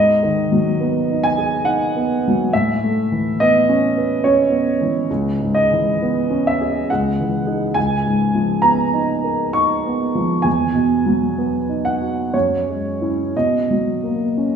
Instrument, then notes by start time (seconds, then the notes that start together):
grand piano
Already playing: G#2 D#5
0.23 D#3
0.52 F#3
0.80 B3
1.11 D#4
1.24 G#5
1.38 G#4
1.65 D#4 F#5
1.96 B3
2.28 F#3
2.53 A2 E5
2.84 A3
3.12 E3
3.40 B3 D#5
3.69 C#4
3.98 B4
4.24 C#4 C#5
4.50 B3
4.81 E3
5.10 C#2
5.41 G#2
5.55 D#5
5.72 E3
6.02 B3
6.31 C#4
6.47 E5
6.61 G#4
6.90 C#2 F#5
7.20 E3
7.47 D#4 G#4
7.74 C#2 G#5
8.06 G#2
8.35 F3
8.62 B3 A#5
8.94 D#4
9.24 A#4
9.53 D#4 C#6
9.87 B3
10.15 F3
10.42 E2 G#5
10.75 B2
11.06 F#3
11.38 B3
11.69 D#4
11.85 F#5
12.01 F#4
12.34 F#2 C#5
12.69 G#3
13.02 C#4 E4
13.36 B2 D#5
13.70 F#3
14.03 A#3
14.38 C#4